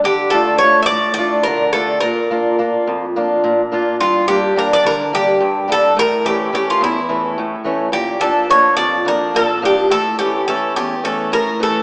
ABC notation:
X:1
M:7/8
L:1/16
Q:1/4=106
K:none
V:1 name="Bouzouki"
G2 A2 ^c3/2 e/2 d2 d2 _B2 A2 | _B6 z8 | F2 G2 _B d B2 G4 A2 | _B2 G2 G F E6 z2 |
G2 A2 ^c2 d2 _B2 A2 G2 | A2 G2 A2 G2 A2 _B2 A2 |]
V:2 name="Steel-string acoustic guitar"
D,2 [A,DF]2 [A,DF]2 A,,2 [A,DF]2 D,2 [A,DF]2 | _B,,2 [_B,DF]2 [B,DF]2 F,,2 [B,DF]2 B,,2 [B,DF]2 | G,,2 [G,_B,D]2 [G,B,D]2 D,2 [G,B,D]2 G,,2 [G,B,D]2 | A,,2 [E,A,^C]2 [E,A,C]2 E,,2 [E,A,C]2 A,,2 [E,A,C]2 |
_B,,2 [F,_B,D]2 [F,B,D]2 F,,2 [F,B,D]2 B,,2 [F,B,D]2 | A,,2 [E,A,^C]2 [E,A,C]2 E,,2 [E,A,C]2 A,,2 [E,A,C]2 |]